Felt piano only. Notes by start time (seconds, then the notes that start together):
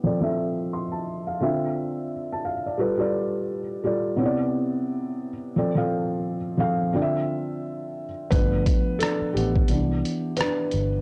0.04 F3 C4 A4 D5
0.21 F3 C4 A4 E5
0.73 C6
0.92 A5
1.27 F5
1.40 D3 C4 F4 E5
2.32 A5
2.45 F5
2.66 D5
2.78 G3 F4 A4 B4
2.97 G3 F4 A4 D5
3.84 G3 F4 A4 D5
4.16 C3 B3 E4 C#5
4.25 D5
5.56 F3 C4 A4 D5
5.75 F3 C4 A4 F5
6.57 F3 C4 A4 F5
6.93 D3 C4 F4 D5
7.02 E5
8.31 F3 A3 B3 D4 B4
8.99 D4 A4
9.33 B3 G4
9.69 E3 B3 D4
10.37 D4 B4